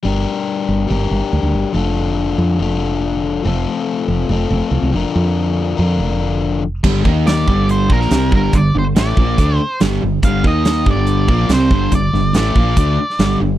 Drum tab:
CC |----------------|----------------|----------------|----------------|
HH |----------------|----------------|----------------|----------------|
SD |----------------|----------------|----------------|----------------|
BD |----------------|----------------|----------------|----------------|

CC |x---------------|----------------|----------------|----------------|
HH |----x---x---x---|x---x---x---x---|x---x---x---x---|x---x---x---x---|
SD |----o------oo---|----o-------o---|----o-------o---|--o-o------oo---|
BD |o-o---o---o---o-|o-----o-o-------|o-o---o---o---o-|o-----o-o-------|